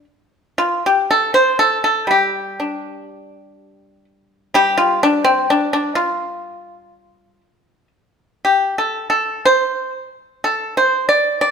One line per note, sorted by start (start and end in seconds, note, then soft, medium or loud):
0.58 0.82 F4 medium
0.86 1.09 G4 medium
1.11 1.34 A4 medium
1.34 1.58 C5 medium
1.59 1.83 A4 medium
1.84 2.07 A4 medium
2.07 4.53 G3 soft
2.07 4.04 G4 medium
2.60 4.55 D4 soft
4.54 7.41 G3 medium
4.54 4.77 G4 loud
4.78 5.00 F4 medium
5.03 5.24 D4 medium
5.24 5.47 C4 medium
5.50 5.71 D4 medium
5.73 5.95 D4 medium
5.95 7.87 F4 medium
8.45 8.75 G4 medium
8.78 9.09 A4 medium
9.10 9.41 A4 medium
9.45 9.90 C5 medium
10.44 10.74 A4 medium
10.77 11.07 C5 medium
11.09 11.39 D5 medium
11.41 11.51 D5 medium